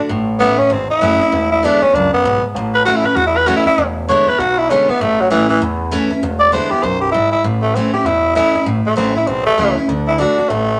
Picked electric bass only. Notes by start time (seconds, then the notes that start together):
0.10 A1
0.60 muted picked electric bass stroke
0.71 G#1
0.90 muted picked electric bass stroke
1.02 F#1
1.22 muted picked electric bass stroke
1.33 E1
1.82 muted picked electric bass stroke
1.93 C#2
2.13 muted picked electric bass stroke
2.24 B1
2.43 muted picked electric bass stroke
2.55 A1
3.04 muted picked electric bass stroke
3.16 E2
3.66 muted picked electric bass stroke
3.77 E1
4.27 muted picked electric bass stroke
4.39 B1
4.89 muted picked electric bass stroke
5.01 A1
5.50 muted picked electric bass stroke
5.62 E2
6.11 muted picked electric bass stroke
6.22 E1
6.72 muted picked electric bass stroke
6.83 B1
7.33 muted picked electric bass stroke
7.44 A1
7.94 muted picked electric bass stroke
8.04 E1
8.55 muted picked electric bass stroke
8.66 A1
8.86 muted picked electric bass stroke
8.97 A1
9.16 muted picked electric bass stroke
9.28 B1
9.47 muted picked electric bass stroke
9.58 C#2
9.78 muted picked electric bass stroke
9.88 D2
10.39 muted picked electric bass stroke
10.50 A1